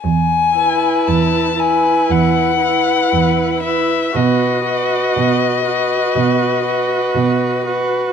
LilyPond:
<<
  \new Staff \with { instrumentName = "Violin" } { \time 4/4 \key e \major \tempo 4 = 59 gis''4 a''8 gis''8 fis''4. e''8 | dis''2.~ dis''8 r8 | }
  \new Staff \with { instrumentName = "Violin" } { \time 4/4 \key e \major r8 b'4 b'4 b'4 b'8 | b'8 b'4 b'4 b'4 b'8 | }
  \new Staff \with { instrumentName = "Viola" } { \time 4/4 \key e \major r8 e'4 e'4 e'4 e'8 | fis'8 fis'4 fis'4 fis'4 fis'8 | }
  \new Staff \with { instrumentName = "Cello" } { \clef bass \time 4/4 \key e \major e,4 e,4 e,4 e,4 | b,4 b,4 b,4 b,4 | }
>>